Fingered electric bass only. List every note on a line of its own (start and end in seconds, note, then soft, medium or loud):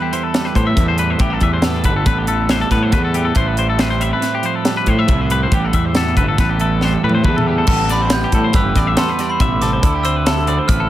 0.55 0.74 A2 medium
0.77 1.14 E2 medium
1.20 1.38 A1 medium
1.41 1.86 E2 medium
1.84 2.03 G1 medium
2.06 2.63 A1 medium
2.71 2.94 A2 medium
2.92 3.30 E2 medium
3.36 4.11 A1 medium
4.87 5.06 A2 medium
5.08 5.46 C2 medium
5.52 5.71 A1 medium
5.73 6.18 E2 medium
6.17 6.36 G1 medium
6.39 6.95 A1 medium
7.03 7.26 A2 medium
7.24 7.62 E2 medium
7.68 8.24 A1 medium
8.33 8.51 A2 medium
8.54 8.73 G1 medium
8.76 8.94 A1 medium
9.40 9.78 A1 medium
9.83 10.58 D2 medium
10.69 10.88 A1 medium